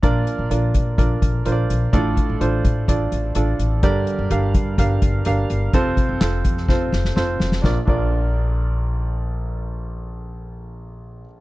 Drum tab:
CC |----------------|----------------|----------------|----------------|
HH |x-x-x-x-x-x-x-x-|x-x-x-x-x-x-x-x-|x-x-x-x-x-x-x-x-|x-x-x-x---------|
CP |----------------|----------------|----------------|----x-----------|
SD |----------------|----------------|----------------|----o--oo-ooo-oo|
BD |o-----o-o-o-----|o-o---o-o-------|o-----o-o-o-----|o-o---o-o-------|

CC |--x-------------|----------------|
HH |----------------|----------------|
CP |----------------|----------------|
SD |o---------------|----------------|
BD |o-o-------------|----------------|